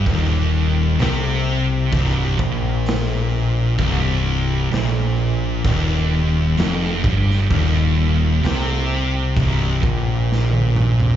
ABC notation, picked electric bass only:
X:1
M:4/4
L:1/8
Q:1/4=64
K:Cm
V:1 name="Picked electric bass" clef=bass
E,,,2 C,,2 C,,, B,,,3 | C,,,2 B,,,2 E,,,2 F,,, G,,, | E,,,2 C,,2 C,,, B,,,3 |]